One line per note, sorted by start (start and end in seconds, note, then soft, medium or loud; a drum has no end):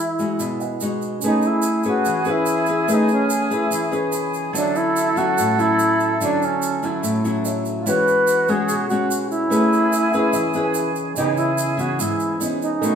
0.00 0.37 E3 medium
0.00 0.83 E4 medium
0.00 0.57 G#4 soft
0.00 0.58 D#5 soft
0.00 0.59 F#5 soft
0.19 0.77 G#3 medium
0.19 0.78 F#4 medium
0.19 shaker soft
0.39 1.20 B2 medium
0.39 shaker medium
0.59 1.22 G#4 soft
0.59 1.22 D#5 soft
0.59 1.23 F#5 soft
0.59 shaker soft
0.81 1.19 G#3 medium
0.81 1.19 D#4 medium
0.81 1.19 F#4 medium
0.81 shaker medium
1.02 shaker soft
1.19 4.49 C#4 soft
1.19 4.55 G#4 medium
1.19 shaker medium
1.24 2.04 A3 medium
1.24 1.64 C#4 soft
1.24 1.48 D#4 medium
1.24 1.64 G#4 medium
1.24 4.51 B4 soft
1.24 1.64 B4 medium
1.24 4.52 G#5 soft
1.42 shaker soft
1.47 1.86 E4 medium
1.62 shaker medium
1.83 2.23 C#4 medium
1.83 2.23 G#4 medium
1.83 2.23 B4 medium
1.83 shaker soft
1.88 2.32 F#4 loud
2.05 2.86 E3 medium
2.05 shaker medium
2.25 2.64 C#4 medium
2.25 2.64 G#4 medium
2.25 2.64 B4 medium
2.25 shaker soft
2.30 2.95 E4 loud
2.46 shaker medium
2.66 2.85 C#4 medium
2.66 2.86 G#4 medium
2.66 2.85 B4 medium
2.66 shaker soft
2.88 3.69 A3 medium
2.88 3.29 C#4 medium
2.88 3.30 G#4 medium
2.88 3.30 B4 medium
2.88 shaker medium
2.93 3.12 D#4 medium
3.09 shaker soft
3.13 3.55 C#4 medium
3.30 shaker medium
3.51 3.89 C#4 medium
3.51 3.93 E4 medium
3.51 3.89 G#4 medium
3.51 3.89 B4 medium
3.51 shaker soft
3.70 4.52 E3 medium
3.70 shaker medium
3.91 4.51 C#4 medium
3.91 4.51 G#4 medium
3.91 4.51 B4 medium
3.91 shaker soft
4.12 4.51 B5 medium
4.12 shaker medium
4.34 shaker soft
4.53 5.35 D3 medium
4.53 5.13 F#3 medium
4.53 5.13 C#4 medium
4.53 4.78 D4 loud
4.53 5.13 E4 medium
4.53 7.40 F#4 soft
4.53 7.65 A4 loud
4.53 7.41 C#5 soft
4.53 shaker medium
4.58 7.42 E5 soft
4.75 5.19 E4 loud
4.75 shaker soft
4.96 shaker medium
5.16 5.54 F#3 medium
5.16 5.55 C#4 medium
5.16 5.55 E4 medium
5.16 5.61 F#4 loud
5.16 shaker soft
5.38 6.19 A2 medium
5.38 shaker medium
5.58 6.17 F#3 medium
5.58 6.17 C#4 medium
5.58 6.17 E4 medium
5.58 6.21 E4 loud
5.58 shaker soft
5.79 shaker medium
6.00 shaker soft
6.21 7.01 D3 medium
6.21 6.79 F#3 medium
6.21 6.80 C#4 medium
6.21 6.46 D4 medium
6.21 6.80 E4 medium
6.21 shaker medium
6.42 6.87 C#4 medium
6.42 shaker soft
6.62 shaker medium
6.83 7.21 F#3 medium
6.83 7.21 C#4 medium
6.83 7.21 E4 medium
6.83 7.25 E4 medium
6.83 shaker soft
7.03 7.84 A2 medium
7.03 shaker medium
7.24 7.83 F#3 medium
7.24 7.83 C#4 medium
7.24 7.83 E4 medium
7.24 shaker soft
7.44 7.86 F#4 soft
7.44 7.86 C#5 soft
7.44 7.87 E5 soft
7.44 shaker medium
7.65 shaker soft
7.80 9.47 E4 soft
7.80 7.88 F4 medium
7.86 8.67 E3 medium
7.86 8.45 G#3 soft
7.86 8.45 C#4 medium
7.86 8.45 F#4 medium
7.86 9.26 F#4 medium
7.86 9.48 G#4 soft
7.86 8.51 B4 loud
7.86 9.49 C#5 soft
7.86 9.50 F#5 soft
7.86 shaker medium
8.08 shaker soft
8.27 shaker medium
8.48 8.86 G#3 medium
8.48 8.87 C#4 medium
8.48 8.87 F#4 medium
8.48 8.88 G#4 loud
8.48 shaker soft
8.69 9.50 B2 medium
8.69 shaker medium
8.89 9.49 G#3 medium
8.89 9.49 C#4 medium
8.89 9.27 F#4 medium
8.89 9.49 F#4 medium
8.89 shaker soft
9.11 shaker medium
9.30 10.92 E4 medium
9.30 shaker soft
9.47 10.31 A3 medium
9.47 11.11 C#4 soft
9.47 9.92 C#4 medium
9.47 9.92 G#4 medium
9.47 11.13 G#4 medium
9.47 11.13 B4 soft
9.47 9.92 B4 medium
9.52 10.63 G#5 soft
9.52 shaker medium
9.73 shaker soft
9.93 shaker medium
10.12 10.52 C#4 medium
10.12 10.52 G#4 medium
10.12 10.52 B4 medium
10.12 10.32 F#5 soft
10.12 shaker soft
10.33 11.14 E3 medium
10.33 10.62 E5 medium
10.33 shaker medium
10.54 11.13 C#4 medium
10.54 11.14 G#4 medium
10.54 11.14 B4 medium
10.54 shaker soft
10.64 10.74 G#5 medium
10.74 11.14 G#5 medium
10.74 shaker medium
10.96 shaker soft
11.15 11.98 C#3 medium
11.15 11.58 E3 medium
11.15 11.58 B3 medium
11.15 12.37 C#4 soft
11.15 11.36 D#4 medium
11.15 11.58 D#4 medium
11.15 12.51 G#4 medium
11.15 shaker medium
11.19 12.39 B4 soft
11.19 12.41 D#5 soft
11.37 11.81 E4 medium
11.37 shaker soft
11.58 shaker medium
11.77 12.37 E3 medium
11.77 12.37 B3 medium
11.77 12.02 F#4 medium
11.77 shaker soft
11.99 12.80 G#2 medium
11.99 12.41 E4 medium
11.99 shaker medium
12.20 shaker soft
12.40 12.68 E3 medium
12.40 12.68 B3 medium
12.40 12.78 C#4 soft
12.40 12.69 D#4 medium
12.40 12.82 E4 soft
12.40 12.82 B4 soft
12.40 12.83 D#5 soft
12.40 shaker medium
12.62 12.95 D#4 medium
12.62 shaker soft
12.79 12.95 B2 medium
12.79 12.95 D#3 medium
12.79 12.95 A3 medium
12.79 12.95 C#4 soft
12.79 12.95 C#4 medium
12.79 12.95 F#4 medium
12.79 12.95 A4 soft
12.79 shaker medium
12.84 12.95 B4 soft
12.84 12.95 D#5 soft